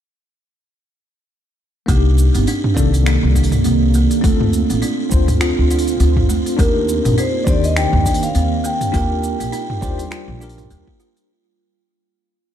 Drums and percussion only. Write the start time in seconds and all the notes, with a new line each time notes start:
1.88 kick, open hi-hat, shaker
2.18 open hi-hat, shaker
2.35 open hi-hat, shaker
2.47 open hi-hat, shaker
2.64 mid tom
2.77 kick, shaker
2.94 open hi-hat, shaker
3.06 finger snap, open hi-hat, shaker
3.36 kick, open hi-hat, shaker
3.44 open hi-hat
3.52 mid tom, open hi-hat, shaker
3.64 open hi-hat, shaker
3.94 open hi-hat, shaker
4.11 open hi-hat, shaker
4.24 kick, open hi-hat, shaker
4.41 mid tom
4.53 open hi-hat, shaker
4.70 open hi-hat, shaker
4.82 open hi-hat, shaker
5.11 kick, shaker
5.28 mid tom, open hi-hat, shaker
5.41 finger snap, open hi-hat, shaker
5.70 open hi-hat, shaker
5.79 open hi-hat
5.87 open hi-hat, shaker
6.00 open hi-hat, shaker
6.17 kick, mid tom
6.29 open hi-hat, shaker
6.46 open hi-hat, shaker
6.59 kick, open hi-hat, shaker
6.89 open hi-hat, shaker
7.05 mid tom, open hi-hat, shaker
7.18 open hi-hat, shaker
7.47 kick, shaker
7.64 open hi-hat, shaker
7.77 finger snap, open hi-hat, shaker
7.93 mid tom
8.06 kick, open hi-hat, shaker
8.14 open hi-hat
8.23 open hi-hat, shaker
8.35 open hi-hat, shaker
8.64 open hi-hat, shaker
8.81 mid tom, open hi-hat, shaker
8.94 kick, open hi-hat, shaker
9.23 open hi-hat, shaker
9.40 open hi-hat, shaker
9.53 open hi-hat, shaker
9.70 mid tom
9.82 kick, open hi-hat, shaker
9.99 open hi-hat, shaker
10.12 finger snap, open hi-hat, shaker
10.41 open hi-hat, shaker
10.49 open hi-hat
10.58 mid tom, open hi-hat, shaker
10.71 open hi-hat, shaker
10.88 kick
11.00 open hi-hat, shaker
11.17 open hi-hat, shaker